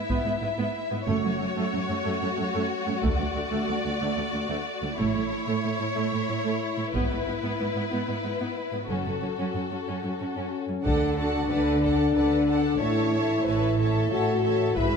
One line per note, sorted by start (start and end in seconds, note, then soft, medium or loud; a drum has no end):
0.00 1.07 E4 soft
0.00 1.03 E5 soft
0.09 0.16 G#2 soft
0.09 0.25 B3 medium
0.09 taiko soft
0.26 0.33 G#2 soft
0.26 0.32 B3 soft
0.42 0.48 G#2 soft
0.42 0.49 B3 soft
0.58 0.65 G#2 medium
0.58 0.73 B3 soft
0.91 0.98 G#2 soft
0.91 0.98 B3 soft
1.07 1.23 F#1 medium
1.07 1.14 F#2 medium
1.07 1.22 A3 medium
1.07 4.99 F#4 medium
1.07 2.99 C#5 soft
1.23 1.30 F#2 soft
1.23 1.30 A3 soft
1.40 1.47 F#2 soft
1.40 1.46 A3 soft
1.56 1.63 F#2 medium
1.56 1.71 A3 medium
1.72 1.80 F#2 soft
1.72 1.79 A3 soft
1.88 1.96 F#2 soft
1.88 1.95 A3 soft
2.05 2.12 F#2 medium
2.05 2.20 A3 medium
2.21 2.29 F#2 soft
2.21 2.27 A3 soft
2.37 2.45 F#2 soft
2.37 2.44 A3 soft
2.53 2.61 F#2 medium
2.53 2.69 A3 medium
2.85 2.94 F#2 soft
2.85 2.92 A3 soft
3.02 3.18 D2 medium
3.02 3.10 D2 medium
3.02 3.17 A3 medium
3.02 4.99 D5 medium
3.02 taiko medium
3.18 3.26 D2 soft
3.18 3.25 A3 soft
3.35 3.42 D2 soft
3.35 3.42 A3 soft
3.51 3.59 D2 medium
3.51 3.67 A3 medium
3.68 3.76 D2 soft
3.68 3.74 A3 soft
3.84 3.91 D2 soft
3.84 3.91 A3 soft
4.00 4.08 D2 medium
4.00 4.15 A3 medium
4.16 4.24 D2 soft
4.16 4.23 A3 soft
4.33 4.40 D2 soft
4.33 4.40 A3 soft
4.49 4.56 D2 medium
4.49 4.64 A3 medium
4.82 4.89 D2 soft
4.82 4.88 A3 soft
4.98 5.14 A1 medium
4.98 5.05 A2 medium
4.98 5.13 A3 medium
4.98 8.85 E4 medium
4.98 6.94 C#5 medium
5.14 5.22 A2 soft
5.14 5.21 A3 soft
5.30 5.38 A2 soft
5.30 5.37 A3 soft
5.47 5.54 A2 medium
5.47 5.62 A3 soft
5.63 5.70 A2 soft
5.63 5.70 A3 soft
5.80 5.87 A2 soft
5.80 5.86 A3 soft
5.96 6.03 A2 medium
5.96 6.11 A3 medium
6.12 6.19 A2 soft
6.12 6.19 A3 soft
6.28 6.35 A2 soft
6.28 6.35 A3 soft
6.44 6.52 A2 medium
6.44 6.60 A3 soft
6.77 6.84 A2 soft
6.77 6.84 A3 soft
6.94 7.09 G#1 medium
6.94 7.01 G#2 medium
6.94 7.09 B3 soft
6.94 8.85 B4 soft
6.94 taiko soft
7.10 7.17 G#2 soft
7.10 7.17 B3 soft
7.27 7.33 G#2 soft
7.27 7.34 B3 soft
7.43 7.50 G#2 medium
7.43 7.58 B3 soft
7.60 7.66 G#2 soft
7.60 7.66 B3 soft
7.75 7.82 G#2 soft
7.75 7.82 B3 soft
7.92 7.98 G#2 soft
7.92 8.07 B3 soft
8.08 8.15 G#2 soft
8.08 8.15 B3 soft
8.24 8.31 G#2 soft
8.24 8.31 B3 soft
8.40 8.47 G#2 soft
8.40 8.56 B3 soft
8.73 8.80 G#2 soft
8.73 8.80 B3 soft
8.89 9.05 F#1 soft
8.89 8.96 F#2 soft
8.89 9.05 C#4 soft
8.89 10.61 F#4 soft
8.89 10.62 A4 soft
9.06 9.13 F#2 soft
9.06 9.13 C#4 soft
9.22 9.29 F#2 soft
9.22 9.28 C#4 soft
9.39 9.45 F#2 soft
9.39 9.54 C#4 soft
9.55 9.61 F#2 soft
9.55 9.61 C#4 soft
9.71 9.78 F#2 soft
9.71 9.78 C#4 soft
9.88 9.94 F#2 soft
9.88 10.03 C#4 soft
10.04 10.11 F#2 soft
10.04 10.10 C#4 soft
10.20 10.27 F#2 soft
10.20 10.26 C#4 soft
10.20 10.81 C#4 soft
10.37 10.43 F#2 soft
10.37 10.52 C#4 soft
10.69 10.76 F#2 soft
10.69 10.75 C#4 soft
10.84 11.43 D2 soft
10.84 11.42 D3 soft
10.84 12.81 D4 medium
10.84 11.15 A4 soft
10.84 11.17 A4 soft
10.84 11.17 D5 soft
10.84 11.16 F#5 soft
10.84 11.16 A5 soft
10.84 taiko medium
11.17 11.50 F#4 soft
11.17 11.50 A4 soft
11.17 11.50 D5 soft
11.17 11.49 F#5 soft
11.17 11.49 A5 soft
11.50 12.08 D2 soft
11.50 12.08 D3 soft
11.50 11.82 A4 soft
11.50 11.83 B4 medium
11.50 11.82 D5 soft
11.50 11.81 F#5 soft
11.50 11.82 A5 soft
11.82 12.14 A4 soft
11.82 12.16 A4 soft
11.82 12.15 D5 soft
11.82 12.14 F#5 soft
11.82 12.14 A5 soft
11.82 taiko soft
12.15 12.73 D2 soft
12.15 12.73 D3 soft
12.15 12.47 A4 soft
12.15 12.48 B4 soft
12.15 12.47 D5 soft
12.15 12.47 F#5 soft
12.15 12.47 A5 soft
12.48 12.80 A4 soft
12.48 12.81 A4 soft
12.48 12.80 D5 soft
12.48 12.80 F#5 soft
12.48 12.79 A5 soft
12.80 13.38 A1 soft
12.80 13.38 A2 soft
12.80 14.08 E4 medium
12.80 13.13 A4 soft
12.80 13.46 C#5 medium
12.80 13.13 C#5 soft
12.80 13.12 E5 soft
12.80 13.12 A5 soft
13.14 13.45 A4 soft
13.14 13.45 C#5 soft
13.14 13.45 E5 soft
13.14 13.45 A5 soft
13.45 14.03 A1 soft
13.45 14.03 A2 soft
13.45 13.78 A4 soft
13.45 13.78 B4 soft
13.45 13.78 C#5 soft
13.45 13.78 E5 soft
13.45 13.78 A5 soft
13.79 14.75 A4 soft
13.79 14.10 A4 soft
13.79 14.10 C#5 soft
13.79 14.11 E5 soft
13.79 14.11 A5 soft
14.10 14.68 A1 soft
14.10 14.68 A2 soft
14.10 14.76 F#4 medium
14.10 14.43 A4 soft
14.10 14.43 C#5 soft
14.10 14.42 E5 soft
14.10 14.42 A5 soft
14.43 14.76 A4 soft
14.43 14.76 C#5 soft
14.43 14.75 E5 soft
14.43 14.75 A5 soft
14.76 14.97 G#1 soft
14.76 14.97 G#2 soft
14.76 14.97 E4 medium
14.76 14.97 G#4 soft
14.76 14.97 B4 soft
14.76 14.97 E5 soft
14.76 14.97 B5 soft
14.76 taiko medium